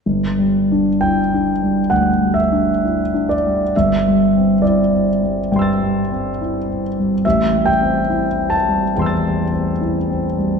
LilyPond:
<<
  \new Staff \with { instrumentName = "Grand piano" } { \time 4/4 \key c \lydian \tempo 4 = 68 << { r1 | r2 <g'' c''' e''' a'''>2 | r2 <g'' c''' e''' a'''>2 | } \\ { r4 g''4 fis''8 e''4 d''8 | e''4 d''2~ d''8 r8 | e''8 g''4 a''2~ a''8 | } >> }
  \new Staff \with { instrumentName = "Grand piano" } { \time 4/4 \key c \lydian \tuplet 3/2 { g,,8 g8 d'8 e'8 d'8 g8 d,8 g8 d'8 e'8 d'8 g8 } | \tuplet 3/2 { g,,8 g8 c'8 e'8 c'8 g8 g,8 g8 c'8 e'8 c'8 g8 } | \tuplet 3/2 { a,,8 g8 c'8 e'8 c'8 g8 e,8 g8 c'8 e'8 c'8 g8 } | }
>>